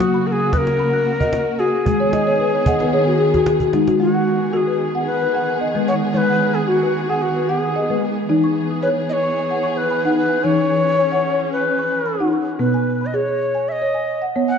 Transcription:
Already playing: string section C#3 A#3 F#4, marimba F#3, native american-style wooden flute F#4
0.00 marimba D#6, cajon slap
0.14 marimba B5, cajon slap
0.27 native american-style wooden flute A#4
0.32 native american-style wooden flute G#4
0.40 marimba D#6, cajon slap
0.53 native american-style wooden flute B4, marimba D#6, cajon bass, cajon slap
0.58 native american-style wooden flute A#4
0.67 cajon slap
0.79 marimba B5
0.94 marimba F#6
1.06 cajon slap
1.20 marimba D#5, cajon bass
1.33 cajon slap
1.59 marimba F#4, native american-style wooden flute G#4
1.86 string section D#3 B3 G#4, marimba G#3, cajon bass
2.00 marimba C#5, cajon slap
2.13 marimba D#5, cajon slap
2.27 marimba C#5
2.39 marimba B4, cajon slap
2.54 marimba C#5
2.66 marimba D#5 F#5, cajon bass
2.80 marimba B4, cajon slap
2.93 marimba G#4 C#5
3.07 marimba F#4
3.20 marimba G#4, cajon slap
3.34 marimba F#4, cajon bass, cajon slap
3.46 marimba G#4, cajon slap
3.60 marimba F#4, cajon bass
3.73 marimba G#3 D#4, cajon slap
3.87 marimba F#4, cajon slap
4.00 string section D#3 B3 G#4, marimba G#3, native american-style wooden flute F#4
4.15 marimba F#5
4.53 marimba F#4, native american-style wooden flute G#4 A#4
4.68 marimba B4
4.95 marimba F#5
5.07 native american-style wooden flute B4
5.22 marimba B4
5.35 marimba F#5
5.61 marimba D#5
5.75 marimba G#3 B4
5.88 native american-style wooden flute C#5, marimba F#5
6.13 marimba G#3, native american-style wooden flute B4 C#5
6.29 marimba F#5
6.54 native american-style wooden flute G#4, marimba G#5
6.67 native american-style wooden flute F#4, marimba F#4
6.83 marimba B4
7.09 native american-style wooden flute G#4, marimba F#5
7.22 native american-style wooden flute F#4
7.36 marimba B4
7.49 native american-style wooden flute G#4, marimba F#5
7.76 marimba D#5
7.90 marimba G#3 B4
8.29 marimba E3 D#4, string section E3 G#4
8.44 marimba C#6
8.70 marimba D#6
8.82 native american-style wooden flute B4, marimba C#5
9.09 native american-style wooden flute C#5 D#5
9.23 marimba C#6
9.51 marimba F#5
9.63 marimba C#6
9.77 native american-style wooden flute B4
9.91 marimba B5
10.05 marimba D#4 F#5
10.18 native american-style wooden flute B4
10.44 marimba E3 D#4, string section C#4, native american-style wooden flute C#5
10.58 marimba C#6
10.98 marimba C#5
11.12 marimba F#5
11.40 marimba C#6
11.53 native american-style wooden flute B4
11.79 marimba C#6
12.06 marimba B5
12.20 marimba D#4 F#5
12.33 marimba C#6
12.59 marimba B2 B3, native american-style wooden flute B4
12.74 marimba G#5
13.01 marimba B5
13.06 native american-style wooden flute D#5
13.14 marimba G#4, native american-style wooden flute C#5
13.28 marimba C#5
13.55 marimba G#5
13.69 native american-style wooden flute D#5 E5
13.82 marimba C#5
13.94 marimba G#5
14.22 marimba F#5
14.36 marimba B3 C#5
14.48 native american-style wooden flute F#5, marimba G#5

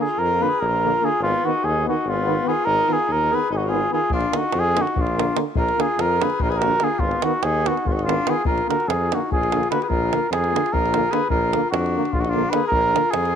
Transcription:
0.01 alto saxophone F4, cornet G#4
0.18 tuba F2, cornet A#4
0.23 alto saxophone F4
0.39 euphonium D3, french horn A#3, cornet B4
0.49 alto saxophone G#4
0.60 tuba A#1, cornet A#4
0.67 alto saxophone F4
0.83 euphonium D3, french horn A#3
1.01 euphonium D3, french horn A#3, cornet G#4
1.05 alto saxophone F4
1.20 tuba G#1, alto saxophone B3, cornet F4
1.43 euphonium D#3, french horn B3, cornet F#4
1.49 alto saxophone D#4
1.63 tuba D#2, alto saxophone D#4, cornet G#4
1.85 euphonium D#3, french horn B3, alto saxophone D#4, cornet F#4
2.05 tuba G#1, alto saxophone B3, cornet F4
2.25 euphonium D#3, french horn B3
2.44 euphonium D#3, french horn B3
2.48 alto saxophone F4, cornet G#4
2.65 tuba G#1, alto saxophone D#4, cornet A#4
2.88 euphonium D#3, french horn B3, alto saxophone F4
2.93 cornet G#4
3.08 tuba D#2, alto saxophone D#4
3.12 cornet A#4
3.32 euphonium D#3, french horn B3, alto saxophone G#4, cornet B4
3.50 tuba G#1, alto saxophone D#4, cornet G#4
3.57 alto saxophone D#4, cornet F#4
3.65 french horn B3, alto saxophone F4, cornet G#4
3.73 euphonium D#3
3.88 french horn B3
3.93 euphonium D#3, alto saxophone F4, cornet G#4
4.10 tuba A#1, alto saxophone D4, cornet F4, davul low
4.21 davul high
4.32 euphonium D3, french horn A#3, alto saxophone D#4, davul high
4.37 cornet F#4
4.52 tuba F2, alto saxophone F4, davul high
4.59 cornet G#4
4.74 euphonium D3, french horn A#3, alto saxophone D#4, davul high
4.81 cornet F#4
4.87 davul high
4.96 tuba A#1, alto saxophone D4, davul low
5.01 cornet F4
5.07 davul high
5.16 euphonium D3, french horn A#3, davul high
5.33 french horn A#3, davul high
5.37 euphonium D3
5.55 tuba A#1, alto saxophone F4, cornet A#4, davul low
5.69 davul high
5.77 euphonium D3, french horn A#3, alto saxophone F4, cornet G#4, davul high
5.98 tuba F2, alto saxophone F4, cornet A#4, davul high
6.20 euphonium D3, french horn A#3, alto saxophone G#4, cornet B4, davul high
6.30 davul high
6.40 tuba A#1, alto saxophone F4, cornet A#4, davul low
6.49 alto saxophone G#4, cornet B4, davul high
6.56 alto saxophone F#4, cornet A#4
6.62 euphonium D3, french horn A#3, davul high
6.80 euphonium D3, french horn A#3, alto saxophone F4, cornet G#4, davul high
6.99 tuba G#1, alto saxophone B3, cornet F4, davul low
7.11 davul high
7.22 euphonium D#3, french horn B3, cornet F#4, davul high
7.27 alto saxophone D#4
7.43 tuba D#2, alto saxophone D#4, cornet G#4, davul high
7.66 euphonium D#3, french horn B3, alto saxophone D#4, cornet F#4, davul high
7.77 davul high
7.85 tuba G#1, alto saxophone B3, cornet F4, davul low
7.92 alto saxophone D#4, cornet F#4
7.99 cornet F4, davul high
8.05 euphonium D#3, french horn B3, alto saxophone D4
8.09 davul high
8.27 euphonium D#3, french horn B3, alto saxophone F4, cornet G#4, davul high
8.45 tuba A#1, alto saxophone F4, cornet A#4, davul low
8.58 davul high
8.67 euphonium D3, french horn A#3, alto saxophone F#4, cornet A#4, davul high
8.80 davul high
8.88 tuba F2, alto saxophone F4, cornet G#4, davul high
9.12 euphonium D3, french horn A#3, alto saxophone D#4, cornet F#4, davul high
9.32 tuba A#1, alto saxophone F4, cornet G#4, davul low
9.43 davul high
9.52 euphonium D3, french horn A#3, davul high
9.63 davul high
9.71 euphonium D3, french horn A#3, alto saxophone F#4, cornet B4, davul high
9.82 alto saxophone G#4, cornet B4, davul high
9.88 tuba A#1, alto saxophone F4, cornet A#4, davul low
10.12 euphonium D3, french horn A#3, davul high
10.30 tuba F2, alto saxophone F4, cornet G#4, davul high
10.44 davul high
10.52 euphonium D3, french horn A#3
10.56 davul high
10.66 davul high
10.72 tuba A#1, alto saxophone F4, cornet A#4, davul low
10.86 davul high
10.94 euphonium D3, french horn A#3, davul high
11.11 euphonium D3, french horn A#3, alto saxophone G#4, cornet B4, davul high
11.30 tuba A#1, alto saxophone F4, cornet A#4, davul low
11.53 euphonium D3, french horn A#3, davul high
11.71 tuba F2, alto saxophone D4, cornet F#4, davul high
11.86 davul high
11.96 euphonium D3, french horn A#3
12.05 davul high
12.12 tuba A#1, cornet F4, davul low
12.18 alto saxophone D4, cornet F#4
12.24 alto saxophone D#4, davul high
12.29 alto saxophone D4, cornet F4
12.34 euphonium D3, french horn A#3
12.50 euphonium D3, french horn A#3, cornet B4, davul high
12.55 alto saxophone G#4
12.68 tuba A#1, cornet A#4
12.72 alto saxophone F4, davul low
12.94 euphonium D3, french horn A#3, davul high
13.11 tuba F2, cornet G#4, davul high
13.15 alto saxophone F4
13.25 davul high

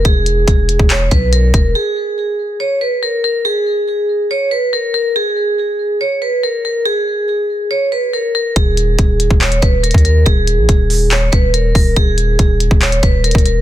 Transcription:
0.05 808-style bass E1, vibraphone G#4, kick, closed hi-hat
0.26 closed hi-hat
0.48 808-style bass E1, kick, closed hi-hat
0.69 closed hi-hat
0.79 808-style bass E1, kick
0.90 vibraphone C#5, clap, closed hi-hat
1.11 808-style bass B1, vibraphone B4, kick, closed hi-hat
1.33 vibraphone A#4, closed hi-hat
1.54 808-style bass E1, vibraphone A#4, kick, closed hi-hat
1.75 vibraphone G#4
2.60 vibraphone C#5
2.81 vibraphone B4
3.03 vibraphone A#4
3.24 vibraphone A#4
3.45 vibraphone G#4
4.31 vibraphone C#5
4.51 vibraphone B4
4.73 vibraphone A#4
4.94 vibraphone A#4
5.16 vibraphone G#4
6.01 vibraphone C#5
6.22 vibraphone B4
6.43 vibraphone A#4
6.65 vibraphone A#4
6.86 vibraphone G#4
7.71 vibraphone C#5
7.92 vibraphone B4
8.13 vibraphone A#4
8.35 vibraphone A#4
8.56 808-style bass D#1, vibraphone G#4, kick, closed hi-hat
8.77 closed hi-hat
8.99 808-style bass D#1, kick, closed hi-hat
9.20 closed hi-hat
9.31 808-style bass D#1, kick
9.41 vibraphone C#5, clap, closed hi-hat
9.52 closed hi-hat
9.62 808-style bass D#1, vibraphone B4, kick, closed hi-hat
9.83 vibraphone A#4, closed hi-hat
9.91 808-style bass D#2, kick, closed hi-hat
9.98 closed hi-hat
10.05 vibraphone A#4, closed hi-hat
10.26 808-style bass D#1, vibraphone G#4, kick, closed hi-hat
10.47 closed hi-hat
10.58 808-style bass A#1
10.69 kick, closed hi-hat
10.90 open hi-hat
11.11 vibraphone C#5, clap, closed hi-hat
11.32 808-style bass D#1, vibraphone B4, kick, closed hi-hat
11.54 vibraphone A#4, closed hi-hat
11.75 808-style bass D#1, vibraphone A#4, kick, open hi-hat
11.96 808-style bass D#1, vibraphone G#4, kick, closed hi-hat
12.18 closed hi-hat
12.39 808-style bass D#1, kick, closed hi-hat
12.60 closed hi-hat
12.71 808-style bass D#1, kick
12.82 vibraphone C#5, clap, closed hi-hat
12.92 closed hi-hat
13.03 808-style bass D#1, vibraphone B4, kick, closed hi-hat
13.24 vibraphone A#4, closed hi-hat
13.31 808-style bass D#1, kick, closed hi-hat
13.38 closed hi-hat
13.46 vibraphone A#4, closed hi-hat

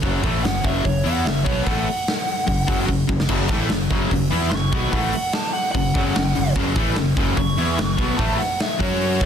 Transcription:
0.02 fingered electric bass F#1, distorted electric guitar F#2 C#3 F#3, kick
0.22 fingered electric bass A1, distorted electric guitar A2 E3 A3, kick, open hi-hat
0.43 fingered electric bass F#1, distorted electric guitar F#2 C#3, lead electric guitar F#5, snare, open hi-hat
0.64 fingered electric bass F#1, distorted electric guitar F#2 C#3 F#3, lead electric guitar E5, kick, open hi-hat
0.83 fingered electric bass F#1, distorted electric guitar F#2 C#3, lead electric guitar C#5, kick, open hi-hat
1.04 fingered electric bass E2, distorted electric guitar E3 B3 E4, lead electric guitar F#5, open hi-hat
1.24 fingered electric bass F#1, distorted electric guitar F#2 C#3, lead electric guitar E5, snare, open hi-hat
1.44 fingered electric bass B1, distorted electric guitar B2 F#3 B3, lead electric guitar C#5, kick, open hi-hat
1.63 fingered electric bass A1, distorted electric guitar A2 E3, lead electric guitar F#5, kick
1.67 distorted electric guitar A3, open hi-hat
1.86 open hi-hat
2.07 snare, open hi-hat
2.28 open hi-hat
2.46 fingered electric bass F#1, distorted electric guitar F#2 C#3, kick, open hi-hat
2.67 fingered electric bass F#1, distorted electric guitar F#2 C#3 F#3, kick, open hi-hat
2.86 fingered electric bass F#1, distorted electric guitar F#2 C#3, kick
3.07 fingered electric bass F#1, distorted electric guitar F#2 C#3, kick
3.20 snare
3.29 fingered electric bass F#1, distorted electric guitar F#2 C#3 F#3, kick, open hi-hat, crash
3.48 fingered electric bass A1, distorted electric guitar A2 E3 A3, kick, snare, open hi-hat
3.69 fingered electric bass F#1, distorted electric guitar F#2 C#3, snare, open hi-hat
3.90 fingered electric bass F#1, distorted electric guitar F#2 C#3 F#3, kick, open hi-hat
4.11 fingered electric bass F#1, distorted electric guitar F#2 C#3, kick, open hi-hat
4.31 fingered electric bass E2, distorted electric guitar E3 B3 E4, open hi-hat
4.50 fingered electric bass F#1, distorted electric guitar F#2 C#3, lead electric guitar C#6, snare
4.72 fingered electric bass B1, distorted electric guitar B2 F#3 B3, kick, open hi-hat
4.91 fingered electric bass A1, distorted electric guitar A2 E3 A3, lead electric guitar F#5, kick, open hi-hat
5.13 lead electric guitar F#5, open hi-hat
5.33 lead electric guitar A5, snare, open hi-hat
5.53 lead electric guitar F#5, open hi-hat
5.72 fingered electric bass F#1, distorted electric guitar F#2 C#3, lead electric guitar F#5, kick, open hi-hat
5.94 fingered electric bass F#1, distorted electric guitar F#2 C#3 F#3, kick, open hi-hat
6.15 fingered electric bass F#1, distorted electric guitar F#2 C#3, snare, open hi-hat
6.35 fingered electric bass F#1, distorted electric guitar F#2 C#3, open hi-hat
6.55 fingered electric bass F#1, distorted electric guitar F#2 C#3 F#3, kick, open hi-hat
6.75 fingered electric bass A1, distorted electric guitar A2 E3 A3, kick, open hi-hat
6.96 fingered electric bass F#1, distorted electric guitar F#2 C#3, snare, open hi-hat
7.17 fingered electric bass F#1, distorted electric guitar F#2 C#3 F#3, kick, open hi-hat
7.37 fingered electric bass F#1, distorted electric guitar F#2 C#3, lead electric guitar C#6, kick, open hi-hat
7.57 fingered electric bass E2, distorted electric guitar E3 B3 E4, open hi-hat
7.78 fingered electric bass F#1, distorted electric guitar F#2 C#3, snare, open hi-hat
7.97 fingered electric bass B1, distorted electric guitar B2 F#3 B3, kick, open hi-hat
8.17 fingered electric bass A1, distorted electric guitar A2 E3 A3, lead electric guitar A5, kick, open hi-hat
8.39 lead electric guitar F#5, snare, open hi-hat
8.60 lead electric guitar E5, snare, open hi-hat
8.79 fingered electric bass F#2, distorted electric guitar F#3 C#4 F#4, lead electric guitar C#5, kick, open hi-hat
9.01 open hi-hat
9.21 fingered electric bass A1, distorted electric guitar A2 E3 A3, kick

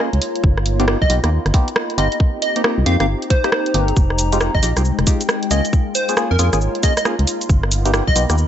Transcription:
Already playing: analog synth pad G#3 A#3 D#4 F4, ambient pad F4 C#5 A#5
0.13 fm bass C#2, closed hi-hat
0.22 open hi-hat
0.36 closed hi-hat
0.44 fm bass G1, analog synth pad B3, kick
0.58 cross-stick
0.66 open hi-hat
0.80 synth stab B3 D#4 F4 G4, ambient pad D#5, closed hi-hat
0.88 synth stab F4 G4, cross-stick
1.02 fm bass B1, digital synth lead D#5, kick
1.10 fm bass B1, synth stab B3 D#4 F4 G4, open hi-hat
1.24 fm bass D#2, synth stab B3 D#4 F4 G4, ambient pad B5, cross-stick, closed hi-hat
1.46 fm bass G1, cross-stick, closed hi-hat
1.54 synth stab B3 D#4 F4 G4, kick, open hi-hat
1.68 closed hi-hat
1.76 cross-stick
1.90 closed hi-hat
1.98 fm bass G1, synth stab B3 D#4 F4 G4, digital synth lead D#5, open hi-hat
2.12 closed hi-hat
2.20 analog synth pad C4 G4, ambient pad D#4, kick
2.42 digital synth lead D#5, open hi-hat
2.56 synth stab A#3 C4 D#4 G4, closed hi-hat
2.64 synth stab A#3 C4 D#4 G4, cross-stick
2.78 fm bass C2
2.86 fm bass F2, synth stab A#3 C4 D#4 G4, ambient pad C5, digital synth lead F5, open hi-hat
3.00 fm bass G1, synth stab A#3 C4 D#4 G4, digital synth lead F5, ambient pad A#5, cross-stick, closed hi-hat
3.22 closed hi-hat
3.30 digital synth lead C5, kick, open hi-hat
3.44 synth stab A#3 C4 D#4 G4, cross-stick, closed hi-hat
3.52 cross-stick
3.66 closed hi-hat
3.74 fm bass G1, synth stab A#3 C4 D#4 G4, open hi-hat
3.88 closed hi-hat
3.96 fm bass F1, analog synth pad G#3 C4, kick, cabasa
4.10 cross-stick
4.19 open hi-hat, cabasa
4.30 ambient pad G#3, synth stab G#3 D#4 F4 G4, closed hi-hat, cabasa
4.41 synth stab D#4 F4 G4, cross-stick, cabasa
4.55 fm bass G#1, digital synth lead D#5, kick
4.63 fm bass A#1, synth stab G#3 D#4 F4 G4, open hi-hat, cabasa
4.67 ambient pad G5
4.77 fm bass C2, synth stab G#3 D#4 F4 G4, cross-stick, closed hi-hat, cabasa
4.85 cabasa
4.99 fm bass F1, cross-stick, closed hi-hat
5.07 synth stab G#3 D#4 F4 G4, kick, open hi-hat, cabasa
5.21 closed hi-hat, cabasa
5.29 cross-stick, cabasa
5.43 closed hi-hat
5.51 fm bass C#2, synth stab A#3 C#4 F4 G#4, analog synth pad A#3 F4, ambient pad F4, digital synth lead D#5, open hi-hat, cabasa
5.65 closed hi-hat, cabasa
5.73 kick, cabasa
5.95 digital synth lead C5, ambient pad C#5, open hi-hat, cabasa
6.09 synth stab A#3 C#4 F4 G#4, closed hi-hat, cabasa
6.17 synth stab A#3 C#4 F4 G#4, cross-stick, cabasa
6.31 fm bass F2, digital synth lead A#4, ambient pad A#5
6.39 fm bass F2, synth stab A#3 C#4 F4 G#4, digital synth lead A#4, open hi-hat, cabasa
6.53 fm bass G#1, synth stab A#3 C#4 F4 G#4, cross-stick, closed hi-hat, cabasa
6.61 cabasa
6.75 closed hi-hat
6.83 synth stab A#3 C#4 F4 G#4, digital synth lead D#5, kick, open hi-hat, cabasa
6.97 digital synth lead D#5, cross-stick, closed hi-hat, cabasa
7.05 synth stab A#3 C#4 F4 G#4, cross-stick, cabasa
7.19 fm bass C#2, closed hi-hat
7.27 open hi-hat, cabasa
7.41 closed hi-hat, cabasa
7.49 fm bass G1, analog synth pad B3 D#4, kick, cabasa
7.63 cross-stick
7.68 ambient pad D#5, open hi-hat, cabasa
7.76 ambient pad B5
7.85 synth stab B3 D#4 F4 G4, closed hi-hat, cabasa
7.94 synth stab B3 D#4 F4 G4, cross-stick, cabasa
8.07 fm bass B1, digital synth lead D#5, kick
8.16 fm bass B1, synth stab B3 D#4 F4 G4, open hi-hat, cabasa
8.30 fm bass D#2, synth stab B3 D#4 F4 G4, cross-stick, closed hi-hat, cabasa
8.38 cabasa

